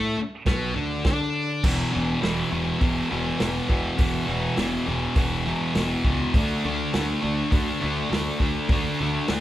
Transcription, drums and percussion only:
0.46 kick loud
0.46 snare loud
0.46 crash medium
1.04 kick loud
1.04 snare loud
1.04 crash medium
1.64 kick loud
1.64 crash loud
2.23 snare loud
2.23 open hi-hat medium
2.81 kick loud
2.81 open hi-hat medium
3.40 snare loud
3.40 open hi-hat medium
3.70 kick medium
3.98 kick loud
3.98 open hi-hat medium
4.57 snare loud
4.57 open hi-hat medium
5.16 kick loud
5.16 open hi-hat medium
5.75 snare loud
5.75 open hi-hat medium
6.04 kick medium
6.34 kick loud
6.34 open hi-hat medium
6.93 snare loud
6.93 open hi-hat medium
7.52 kick loud
7.52 open hi-hat medium
8.12 snare loud
8.12 open hi-hat medium
8.40 kick medium
8.69 kick loud
8.69 open hi-hat medium
9.28 snare loud
9.28 open hi-hat medium

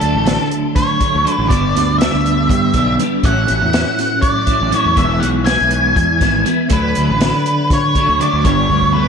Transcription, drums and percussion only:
0.01 closed hi-hat medium
0.26 snare loud
0.26 closed hi-hat medium
0.51 closed hi-hat medium
0.76 kick medium
0.76 snare soft
0.76 closed hi-hat medium
1.00 kick medium
1.00 closed hi-hat medium
1.27 closed hi-hat medium
1.50 kick loud
1.50 closed hi-hat medium
1.76 snare soft
1.76 closed hi-hat medium
2.01 snare loud
2.01 closed hi-hat medium
2.26 closed hi-hat medium
2.49 kick medium
2.49 closed hi-hat medium
2.74 kick medium
2.74 closed hi-hat medium
2.99 closed hi-hat medium
3.23 kick loud
3.23 closed hi-hat medium
3.48 closed hi-hat medium
3.73 snare loud
3.73 closed hi-hat medium
3.99 snare soft
3.99 closed hi-hat medium
4.22 kick loud
4.22 closed hi-hat medium
4.47 kick medium
4.47 closed hi-hat medium
4.72 closed hi-hat medium
4.97 kick loud
4.97 closed hi-hat medium
5.23 closed hi-hat medium
5.46 snare medium
5.46 closed hi-hat medium
5.71 closed hi-hat medium
5.96 kick medium
5.96 closed hi-hat medium
6.21 kick medium
6.21 snare soft
6.21 closed hi-hat medium
6.46 closed hi-hat medium
6.70 kick medium
6.70 closed hi-hat medium
6.95 closed hi-hat medium
7.21 snare loud
7.21 closed hi-hat medium
7.46 closed hi-hat medium
7.70 kick loud
7.70 snare soft
7.70 closed hi-hat medium
7.95 kick medium
7.95 closed hi-hat medium
8.21 closed hi-hat medium
8.45 kick loud
8.45 closed hi-hat medium
8.70 kick medium
8.82 kick soft

